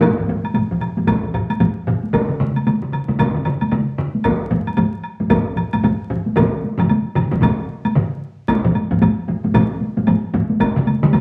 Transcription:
0.01 taiko loud
0.01 taiko low-mid medium
0.01 taiko high medium
0.01 high woodblock soft
0.18 taiko low-mid medium
0.28 taiko low-mid medium
0.28 taiko high soft
0.44 taiko high soft
0.44 high woodblock soft
0.54 taiko low-mid medium
0.54 taiko high medium
0.54 high woodblock soft
0.71 taiko low-mid medium
0.81 taiko low-mid medium
0.81 high woodblock soft
0.97 taiko low-mid medium
0.97 taiko high soft
1.07 taiko medium
1.07 taiko low-mid medium
1.07 taiko high medium
1.07 high woodblock soft
1.23 taiko low-mid medium
1.34 taiko low-mid medium
1.34 high woodblock soft
1.50 taiko high medium
1.50 high woodblock soft
1.60 taiko low-mid medium
1.60 taiko high medium
1.60 high woodblock soft
1.87 taiko low-mid medium
2.03 taiko high soft
2.13 taiko loud
2.13 taiko mid medium
2.13 taiko high soft
2.13 high woodblock soft
2.29 taiko mid medium
2.40 taiko mid medium
2.40 taiko high soft
2.56 taiko high soft
2.56 high woodblock soft
2.67 taiko mid medium
2.67 taiko high medium
2.67 high woodblock soft
2.82 taiko mid medium
2.92 taiko mid medium
2.92 high woodblock soft
3.08 taiko mid medium
3.08 taiko high soft
3.19 taiko medium
3.19 taiko mid medium
3.19 taiko high medium
3.19 high woodblock soft
3.35 taiko mid medium
3.45 taiko mid medium
3.45 high woodblock soft
3.61 taiko high medium
3.61 high woodblock soft
3.71 taiko mid medium
3.71 taiko high medium
3.71 high woodblock soft
3.98 taiko mid medium
4.15 taiko high soft
4.24 taiko medium
4.24 taiko low-mid medium
4.24 taiko high medium
4.24 high woodblock soft
4.51 taiko low-mid medium
4.51 taiko high soft
4.67 taiko high soft
4.67 high woodblock soft
4.77 taiko low-mid medium
4.77 taiko high medium
4.77 high woodblock soft
5.04 high woodblock soft
5.20 taiko low-mid medium
5.20 taiko high medium
5.30 taiko medium
5.30 taiko low-mid medium
5.30 taiko high medium
5.30 high woodblock soft
5.56 taiko low-mid medium
5.56 high woodblock soft
5.73 taiko low-mid medium
5.73 taiko high medium
5.73 high woodblock soft
5.83 taiko low-mid medium
5.83 taiko high medium
5.83 high woodblock soft
6.10 taiko low-mid medium
6.26 taiko high medium
6.36 taiko medium
6.36 taiko low-mid medium
6.36 taiko mid medium
6.36 taiko high medium
6.36 high woodblock medium
6.64 taiko high soft
6.79 taiko low-mid medium
6.79 taiko mid medium
6.79 taiko high soft
6.79 high woodblock soft
6.89 taiko high medium
6.89 high woodblock soft
7.15 taiko low-mid medium
7.15 taiko mid medium
7.15 high woodblock soft
7.32 taiko low-mid medium
7.32 taiko mid medium
7.32 taiko high medium
7.42 taiko medium
7.42 taiko low-mid medium
7.42 taiko mid medium
7.42 taiko high medium
7.42 high woodblock soft
7.85 taiko high medium
7.85 high woodblock soft
7.95 taiko low-mid medium
7.95 taiko mid medium
8.48 taiko loud
8.48 taiko high medium
8.48 high woodblock medium
8.65 taiko low-mid loud
8.75 taiko high medium
8.75 high woodblock soft
8.91 taiko low-mid medium
8.91 taiko high medium
9.02 taiko low-mid loud
9.02 taiko high medium
9.02 high woodblock soft
9.28 taiko low-mid medium
9.28 taiko high medium
9.44 taiko low-mid medium
9.44 taiko high medium
9.54 taiko medium
9.54 taiko low-mid loud
9.54 taiko high medium
9.54 high woodblock medium
9.81 taiko high medium
9.97 taiko low-mid medium
9.97 taiko high medium
10.07 taiko low-mid medium
10.07 taiko high medium
10.07 high woodblock soft
10.34 taiko low-mid loud
10.34 taiko high medium
10.50 taiko high medium
10.60 taiko medium
10.60 taiko high medium
10.60 high woodblock soft
10.76 taiko mid medium
10.87 taiko high medium
10.87 high woodblock soft
11.02 taiko mid loud
11.02 taiko high medium
11.13 taiko mid medium
11.13 taiko high medium
11.13 high woodblock soft

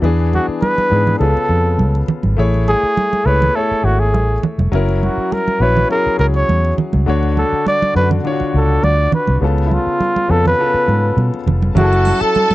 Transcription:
0.02 0.38 E2 loud
0.02 0.60 E3 medium
0.02 0.60 B3 medium
0.02 0.61 D4 medium
0.02 0.61 G#4 medium
0.02 muted conga soft
0.34 0.47 F#4 medium
0.34 high conga medium
0.48 muted fingered electric bass stroke soft
0.62 1.16 B4 medium
0.62 muted conga soft
0.62 high conga medium
0.78 muted conga soft
0.78 high conga medium
0.90 1.14 G#2 medium
0.90 1.10 E3 medium
0.90 1.11 B3 medium
0.90 1.11 D4 soft
0.90 1.12 G#4 medium
1.07 low conga medium
1.19 1.33 C#2 medium
1.19 1.97 C#3 medium
1.19 1.98 B3 medium
1.19 1.98 F4 medium
1.19 2.04 A4 medium
1.19 muted conga soft
1.23 1.29 G#4 medium
1.30 2.02 A4 medium
1.37 muted conga soft
1.49 1.80 F2 medium
1.79 2.02 C#2 medium
1.79 high conga medium
1.95 muted conga soft
2.08 low conga medium
2.23 2.35 G#1 medium
2.23 high conga medium
2.37 2.73 A1 loud
2.37 2.95 A3 medium
2.37 2.95 E4 medium
2.37 2.96 G#4 medium
2.37 2.96 C#5 medium
2.54 muted conga soft
2.68 3.27 G#4 medium
2.68 high conga medium
2.83 muted fingered electric bass stroke soft
2.97 muted conga soft
2.97 high conga medium
3.13 muted conga soft
3.13 high conga medium
3.25 3.49 C#2 medium
3.25 3.45 A3 medium
3.25 3.45 E4 medium
3.25 3.46 G#4 medium
3.25 3.57 B4 medium
3.25 3.47 C#5 medium
3.42 low conga medium
3.54 4.32 A3 medium
3.54 4.33 E4 medium
3.54 4.33 G#4 medium
3.54 3.86 A4 medium
3.54 4.33 C#5 medium
3.71 muted fingered electric bass stroke soft
3.84 4.13 G#1 medium
3.84 4.01 F#4 medium
4.00 4.43 G#4 medium
4.13 4.36 A1 medium
4.13 high conga medium
4.43 low conga medium
4.58 4.69 F1 medium
4.58 high conga medium
4.72 5.08 F#1 medium
4.72 5.30 F#3 medium
4.72 5.30 C#4 medium
4.72 5.31 E4 medium
4.72 5.31 A#4 medium
4.72 muted conga soft
4.89 muted conga soft
5.03 5.34 F#4 medium
5.03 high conga medium
5.18 muted fingered electric bass stroke soft
5.32 5.63 A#4 medium
5.32 high conga medium
5.48 high conga medium
5.59 5.83 A#1 medium
5.59 5.80 F#3 medium
5.59 5.80 C#4 medium
5.59 5.81 E4 medium
5.59 5.90 B4 medium
5.59 5.81 C#5 medium
5.77 low conga medium
5.89 6.67 F#3 medium
5.89 6.68 C#4 medium
5.89 6.68 E4 medium
5.89 6.68 G#4 medium
5.89 6.18 A#4 medium
5.89 muted conga soft
6.06 muted fingered electric bass stroke soft
6.19 6.42 C#2 medium
6.19 6.26 A#4 medium
6.36 6.75 C#5 medium
6.49 6.72 E2 medium
6.49 muted conga soft
6.49 high conga medium
6.64 muted conga soft
6.78 low conga medium
6.93 7.05 C#2 medium
6.93 high conga medium
7.06 7.43 D2 loud
7.06 7.64 D3 medium
7.06 7.65 D4 medium
7.06 7.65 F#4 medium
7.06 7.66 C#5 medium
7.23 muted conga soft
7.37 7.64 A4 medium
7.37 high conga medium
7.53 muted fingered electric bass stroke soft
7.66 7.94 D5 medium
7.66 muted conga soft
7.66 high conga medium
7.82 muted conga soft
7.82 high conga medium
7.94 8.18 F#2 medium
7.94 8.15 D3 medium
7.94 8.15 D4 medium
7.94 8.16 F#4 medium
7.94 8.09 B4 medium
7.94 8.16 D5 medium
8.11 low conga medium
8.24 9.02 D3 medium
8.24 9.02 D4 medium
8.24 8.32 F4 soft
8.24 9.03 C#5 medium
8.24 muted conga soft
8.32 9.06 F#4 medium
8.40 muted fingered electric bass stroke soft
8.40 muted conga soft
8.54 8.77 C#2 medium
8.54 8.86 A4 medium
8.83 9.06 D2 medium
8.83 9.13 D5 loud
8.83 high conga medium
9.12 9.41 B4 medium
9.12 low conga medium
9.27 9.39 C2 medium
9.27 high conga medium
9.41 9.77 C#2 medium
9.41 9.99 C#3 medium
9.41 9.99 B3 medium
9.41 10.00 F4 medium
9.41 10.00 A4 medium
9.58 muted conga soft
9.66 9.75 E4 medium
9.71 10.32 F4 medium
9.71 high conga medium
9.87 muted fingered electric bass stroke soft
10.01 high conga medium
10.16 high conga medium
10.28 10.53 F2 medium
10.28 10.49 C#3 medium
10.28 10.49 B3 medium
10.28 10.50 F4 medium
10.28 10.46 A4 medium
10.28 10.50 A4 medium
10.46 11.30 B4 medium
10.46 low conga medium
10.58 11.36 C#3 medium
10.58 11.36 B3 medium
10.58 11.37 F4 medium
10.58 11.37 A4 medium
10.74 muted fingered electric bass stroke soft
10.88 11.11 G#2 medium
10.88 high conga soft
11.17 11.29 B2 medium
11.17 high conga medium
11.34 muted conga soft
11.46 11.69 F1 medium
11.46 low conga medium
11.62 high conga medium
11.75 12.11 F#1 loud
11.75 12.33 F#3 medium
11.75 12.33 C#4 medium
11.75 12.34 E4 medium
11.75 12.23 F#4 medium
11.75 11.84 G#4 medium
11.75 12.55 A4 loud
11.75 12.55 A5 loud
11.75 low conga medium
11.75 muted triangle medium
11.84 12.37 A4 medium
11.93 muted conga soft
11.93 muted triangle soft
12.05 high conga medium
12.05 triangle medium
12.21 12.55 A4 medium
12.21 muted fingered electric bass stroke soft
12.21 muted triangle medium
12.35 high conga medium
12.35 muted triangle medium
12.50 muted fingered electric bass stroke soft
12.50 high conga medium
12.50 muted triangle soft

